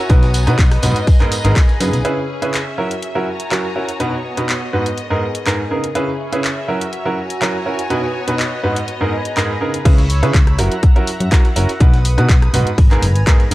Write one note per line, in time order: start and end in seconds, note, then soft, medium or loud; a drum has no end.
0.00 1.47 F#4 medium
0.00 1.47 C#5 medium
0.00 0.49 G#5 medium
0.00 0.49 A#5 medium
0.09 0.49 B1 loud
0.09 0.23 B2 medium
0.09 0.23 B3 medium
0.09 1.47 B3 medium
0.09 0.23 D#4 medium
0.09 0.23 F#4 medium
0.09 0.23 B4 loud
0.09 2.03 B4 medium
0.09 1.06 F#5 medium
0.09 1.06 D#6 medium
0.09 kick loud
0.09 closed hi-hat medium
0.09 tambourine medium
0.23 snare medium
0.23 closed hi-hat soft
0.23 tambourine soft
0.34 closed hi-hat medium
0.34 open hi-hat loud
0.34 tambourine medium
0.47 0.59 B2 medium
0.47 0.56 B2 medium
0.47 0.59 B3 medium
0.47 0.59 D#4 medium
0.47 0.59 F#4 medium
0.47 0.59 B4 medium
0.47 cross-stick medium
0.47 closed hi-hat medium
0.47 tambourine soft
0.54 2.05 D#5 medium
0.58 0.78 B1 medium
0.58 kick loud
0.58 snare loud
0.58 clap loud
0.58 closed hi-hat medium
0.58 tambourine medium
0.71 cross-stick medium
0.71 open hi-hat medium
0.71 tambourine soft
0.82 0.93 B1 loud
0.82 0.96 G#2 medium
0.82 0.96 B3 medium
0.82 0.96 D#4 medium
0.82 0.96 F#4 medium
0.82 0.96 B4 medium
0.82 closed hi-hat medium
0.82 open hi-hat loud
0.82 tambourine medium
0.96 closed hi-hat medium
0.96 tambourine soft
1.07 3.27 G#4 medium
1.07 2.04 G#5 medium
1.07 2.04 A#5 medium
1.07 kick loud
1.07 closed hi-hat medium
1.07 open hi-hat medium
1.07 tambourine medium
1.20 1.32 G#2 medium
1.20 1.32 B3 medium
1.20 1.32 D#4 medium
1.20 1.32 G#4 medium
1.20 1.32 A#4 medium
1.20 clap soft
1.20 closed hi-hat soft
1.20 tambourine soft
1.25 2.35 B4 medium
1.32 closed hi-hat medium
1.32 open hi-hat loud
1.32 tambourine loud
1.44 1.54 G#1 loud
1.44 1.57 G#2 medium
1.44 1.57 B3 medium
1.44 1.57 D#4 medium
1.44 1.57 G#4 medium
1.44 1.57 A#4 medium
1.44 closed hi-hat medium
1.44 tambourine soft
1.56 kick loud
1.56 snare loud
1.56 clap loud
1.56 closed hi-hat medium
1.56 tambourine soft
1.68 snare soft
1.68 closed hi-hat soft
1.68 tambourine soft
1.80 1.91 F#2 loud
1.80 2.01 C#3 medium
1.80 2.01 B3 medium
1.80 2.01 D#4 medium
1.80 2.01 G#4 medium
1.80 2.01 B4 medium
1.80 snare loud
1.80 closed hi-hat medium
1.80 open hi-hat loud
1.80 tambourine loud
1.93 2.03 B1 medium
1.93 snare soft
1.93 closed hi-hat medium
1.93 tambourine soft
2.05 2.18 C#3 medium
2.05 2.18 C#4 medium
2.05 2.77 C#4 medium
2.05 3.27 C#4 medium
2.05 2.18 E4 medium
2.05 2.18 G#4 medium
2.05 2.18 B4 medium
2.05 2.77 B4 medium
2.05 2.77 E6 medium
2.05 closed hi-hat medium
2.38 2.54 C#3 medium
2.38 2.54 C#4 medium
2.38 2.54 E4 medium
2.38 2.54 G#4 medium
2.38 2.54 B4 medium
2.38 3.27 E5 medium
2.42 closed hi-hat medium
2.54 clap loud
2.54 closed hi-hat medium
2.78 2.91 F#3 medium
2.78 2.91 C#4 medium
2.78 2.92 E4 medium
2.78 5.37 F#4 medium
2.78 2.91 F#4 medium
2.78 3.99 F#4 medium
2.78 2.91 A#4 medium
2.78 3.99 E5 medium
2.78 3.99 A#5 medium
2.91 closed hi-hat medium
3.02 closed hi-hat medium
3.08 5.37 C#5 medium
3.08 4.40 G#5 medium
3.15 3.27 F#3 medium
3.15 3.27 C#4 medium
3.15 3.27 E4 medium
3.15 3.27 F#4 medium
3.15 3.27 A#4 medium
3.33 4.40 A#5 medium
3.40 closed hi-hat medium
3.51 3.65 F#3 medium
3.51 3.65 C#4 medium
3.51 3.65 E4 medium
3.51 3.65 F#4 medium
3.51 3.65 A#4 medium
3.51 clap loud
3.51 closed hi-hat medium
3.76 3.89 C#4 medium
3.76 3.89 E4 medium
3.76 3.89 F#4 medium
3.76 3.89 A#4 medium
3.89 closed hi-hat medium
4.00 4.13 B2 medium
4.00 4.13 B3 medium
4.00 5.37 B3 medium
4.00 4.13 D#4 medium
4.00 4.13 F#4 medium
4.00 4.13 B4 medium
4.00 5.93 B4 medium
4.00 4.97 F#5 medium
4.00 4.97 D#6 medium
4.00 closed hi-hat soft
4.20 5.95 D#5 medium
4.37 4.49 B2 medium
4.37 4.49 B3 medium
4.37 4.49 D#4 medium
4.37 4.49 F#4 medium
4.37 4.49 B4 medium
4.37 closed hi-hat medium
4.49 clap loud
4.49 closed hi-hat soft
4.73 4.87 G#2 medium
4.73 4.87 B3 medium
4.73 4.87 D#4 medium
4.73 4.87 F#4 medium
4.73 4.87 B4 medium
4.86 closed hi-hat medium
4.98 7.17 G#4 medium
4.98 5.94 A#4 medium
4.98 5.94 G#5 medium
4.98 closed hi-hat medium
5.10 5.23 G#2 medium
5.10 5.23 B3 medium
5.10 5.23 D#4 medium
5.10 5.23 G#4 medium
5.10 5.23 A#4 medium
5.35 closed hi-hat medium
5.46 5.60 G#2 medium
5.46 5.60 B3 medium
5.46 5.60 D#4 medium
5.46 5.60 G#4 medium
5.46 5.60 A#4 medium
5.46 clap loud
5.46 closed hi-hat soft
5.71 5.84 C#3 medium
5.71 5.84 B3 medium
5.71 5.84 D#4 medium
5.71 5.84 G#4 medium
5.71 5.84 A#4 medium
5.84 closed hi-hat medium
5.95 6.09 C#3 medium
5.95 6.68 C#4 medium
5.95 6.09 C#4 medium
5.95 7.17 C#4 medium
5.95 6.09 E4 medium
5.95 6.09 G#4 medium
5.95 6.68 B4 medium
5.95 6.09 B4 loud
5.95 7.88 E5 medium
5.95 closed hi-hat soft
6.29 6.45 C#3 medium
6.29 6.45 C#4 medium
6.29 6.45 E4 medium
6.29 6.45 G#4 medium
6.29 6.45 B4 medium
6.29 7.17 E5 medium
6.29 closed hi-hat medium
6.44 clap loud
6.44 closed hi-hat soft
6.68 6.82 F#3 medium
6.68 6.82 C#4 medium
6.68 6.82 E4 medium
6.68 6.82 F#4 medium
6.68 9.27 F#4 medium
6.68 7.89 F#4 medium
6.68 6.82 A#4 medium
6.68 7.89 A#5 medium
6.81 closed hi-hat medium
6.88 9.27 C#5 medium
6.93 closed hi-hat soft
7.05 7.18 F#3 medium
7.05 7.18 C#4 medium
7.05 7.18 E4 medium
7.05 7.18 F#4 medium
7.05 7.18 A#4 medium
7.21 8.30 G#5 medium
7.21 8.30 A#5 medium
7.30 closed hi-hat medium
7.41 7.55 F#3 medium
7.41 7.55 C#4 medium
7.41 7.55 E4 medium
7.41 7.55 F#4 medium
7.41 7.55 A#4 medium
7.41 clap loud
7.41 closed hi-hat soft
7.66 7.79 C#4 medium
7.66 7.79 E4 medium
7.66 7.79 F#4 medium
7.66 7.79 A#4 medium
7.79 closed hi-hat medium
7.90 8.04 B2 medium
7.90 8.04 B3 medium
7.90 9.28 B3 medium
7.90 8.04 D#4 medium
7.90 8.04 F#4 medium
7.90 8.87 B4 medium
7.90 8.04 B4 medium
7.90 8.87 F#5 medium
7.90 8.87 D#6 medium
7.90 closed hi-hat soft
8.28 8.40 B2 medium
8.28 8.40 B3 medium
8.28 8.40 D#4 medium
8.28 8.40 F#4 medium
8.28 8.40 B4 medium
8.28 closed hi-hat medium
8.35 9.86 D#5 medium
8.39 clap loud
8.39 closed hi-hat soft
8.63 8.77 G#2 medium
8.63 8.77 B3 medium
8.63 8.77 D#4 medium
8.63 8.77 F#4 medium
8.63 8.77 B4 medium
8.76 closed hi-hat medium
8.88 9.86 G#4 medium
8.88 9.85 B4 medium
8.88 9.84 G#5 medium
8.88 9.85 A#5 medium
8.88 closed hi-hat soft
9.01 9.13 G#2 medium
9.01 9.13 B3 medium
9.01 9.13 D#4 medium
9.01 9.13 G#4 medium
9.01 9.13 A#4 medium
9.25 closed hi-hat medium
9.32 9.86 B4 medium
9.37 9.50 G#2 medium
9.37 9.50 B3 medium
9.37 9.50 D#4 medium
9.37 9.50 G#4 medium
9.37 9.50 A#4 medium
9.37 clap loud
9.37 closed hi-hat soft
9.61 9.74 C#3 medium
9.61 9.74 B3 medium
9.61 9.74 D#4 medium
9.61 9.74 G#4 medium
9.61 9.74 A#4 medium
9.74 closed hi-hat medium
9.85 10.24 C#2 loud
9.85 9.99 C#3 loud
9.85 9.99 C#4 medium
9.85 9.99 E4 medium
9.85 9.99 G#4 medium
9.85 9.99 B4 loud
9.85 10.58 C#5 medium
9.85 10.58 B5 medium
9.85 10.58 E6 medium
9.85 kick loud
9.85 closed hi-hat medium
9.85 crash loud
9.98 snare medium
9.98 closed hi-hat soft
10.10 closed hi-hat medium
10.10 open hi-hat loud
10.23 10.35 C#3 medium
10.23 10.32 C#3 medium
10.23 10.35 C#4 medium
10.23 10.35 E4 medium
10.23 10.35 G#4 medium
10.23 10.35 B4 medium
10.23 cross-stick medium
10.23 closed hi-hat medium
10.34 10.60 C#2 loud
10.34 kick loud
10.34 snare loud
10.34 clap loud
10.34 closed hi-hat medium
10.47 cross-stick medium
10.47 closed hi-hat soft
10.58 10.69 F#1 loud
10.58 10.72 F#3 medium
10.58 10.72 C#4 medium
10.58 10.72 E4 medium
10.58 10.72 F#4 medium
10.58 10.72 A#4 medium
10.58 11.79 E5 medium
10.58 12.76 F#5 medium
10.58 11.79 A#5 medium
10.58 cross-stick medium
10.58 closed hi-hat medium
10.58 open hi-hat loud
10.72 closed hi-hat medium
10.83 kick loud
10.83 closed hi-hat medium
10.96 11.08 F#3 medium
10.96 11.08 C#4 medium
10.96 11.08 E4 medium
10.96 11.08 F#4 medium
10.96 11.08 A#4 medium
10.96 closed hi-hat soft
11.07 closed hi-hat medium
11.07 open hi-hat loud
11.20 11.30 F#2 loud
11.20 closed hi-hat medium
11.32 11.45 F#3 medium
11.32 11.45 C#4 medium
11.32 11.45 E4 medium
11.32 11.45 F#4 medium
11.32 11.45 A#4 loud
11.32 kick loud
11.32 snare loud
11.32 clap loud
11.32 closed hi-hat medium
11.45 snare soft
11.45 closed hi-hat soft
11.56 11.66 F#1 medium
11.56 11.70 C#4 medium
11.56 11.70 E4 medium
11.56 11.70 F#4 medium
11.56 11.70 A#4 medium
11.56 closed hi-hat medium
11.56 open hi-hat loud
11.69 snare soft
11.69 closed hi-hat medium
11.80 12.19 B1 loud
11.80 11.94 B2 medium
11.80 11.94 B3 medium
11.80 11.94 D#4 medium
11.80 11.94 F#4 medium
11.80 11.94 B4 loud
11.80 13.54 B4 medium
11.80 12.77 D#6 medium
11.80 kick loud
11.80 closed hi-hat medium
11.93 snare medium
11.93 closed hi-hat soft
12.05 closed hi-hat medium
12.05 open hi-hat loud
12.18 12.30 B2 medium
12.18 12.27 B2 medium
12.18 12.30 B3 medium
12.18 12.30 D#4 medium
12.18 12.30 F#4 medium
12.18 12.30 B4 medium
12.18 cross-stick medium
12.18 closed hi-hat medium
12.29 12.49 B1 medium
12.29 kick loud
12.29 snare loud
12.29 clap loud
12.29 closed hi-hat medium
12.42 cross-stick medium
12.42 closed hi-hat soft
12.54 12.64 B1 loud
12.54 12.67 G#2 medium
12.54 12.67 B3 medium
12.54 12.67 D#4 medium
12.54 12.67 F#4 medium
12.54 12.67 B4 medium
12.54 closed hi-hat medium
12.54 open hi-hat loud
12.67 closed hi-hat medium
12.78 12.98 G#1 medium
12.78 13.54 G#5 medium
12.78 13.54 A#5 medium
12.78 kick loud
12.78 closed hi-hat medium
12.78 open hi-hat medium
12.91 13.03 G#2 medium
12.91 13.03 B3 medium
12.91 13.03 D#4 medium
12.91 13.03 G#4 medium
12.91 13.03 A#4 medium
12.91 clap soft
12.91 closed hi-hat soft
13.02 13.17 F#1 loud
13.02 closed hi-hat medium
13.02 open hi-hat loud
13.15 13.24 G#1 loud
13.15 closed hi-hat medium
13.27 13.40 G#2 medium
13.27 13.40 B3 medium
13.27 13.40 D#4 medium
13.27 13.40 G#4 medium
13.27 13.40 A#4 loud
13.27 kick loud
13.27 snare loud
13.27 clap loud
13.27 closed hi-hat medium
13.40 snare soft
13.40 closed hi-hat soft
13.51 13.54 G#1 loud
13.51 13.54 D#4 medium
13.51 13.54 G#4 medium
13.51 13.54 A#4 medium